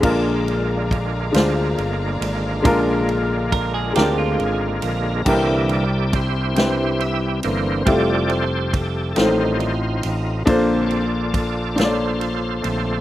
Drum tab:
CC |x-----|------|x-----|------|
RD |-xxxxx|xxxxxx|-xxxxx|xxxxxx|
SD |---o--|---o--|---o--|---o--|
BD |o-o---|o-o---|o-o---|o-o---|

CC |------|
RD |xxxxxx|
SD |---o--|
BD |o-o---|